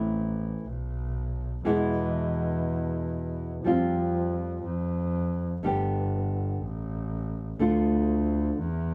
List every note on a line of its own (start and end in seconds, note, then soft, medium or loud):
0.00 0.61 A1 medium
0.00 0.64 E3 medium
0.00 0.65 A3 medium
0.00 0.65 C4 medium
0.00 0.65 E4 medium
0.65 1.60 B1 medium
1.65 3.55 E2 medium
1.65 3.63 B2 medium
1.65 3.64 E3 medium
1.65 3.64 G#3 medium
1.65 3.64 B3 medium
1.65 3.64 E4 medium
3.64 4.59 F2 medium
3.64 4.63 F3 medium
3.64 4.64 G3 medium
3.64 4.64 C4 medium
3.64 4.65 F4 medium
4.63 5.58 F2 medium
5.63 6.58 G1 medium
5.63 6.61 D3 medium
5.63 6.62 G3 medium
5.63 6.62 B3 medium
5.63 6.63 G4 medium
6.62 7.56 A1 medium
7.59 8.55 D2 medium
7.59 8.58 D3 medium
7.59 8.58 A3 medium
7.59 8.59 D4 medium
7.59 8.59 F4 medium
8.59 8.94 E2 medium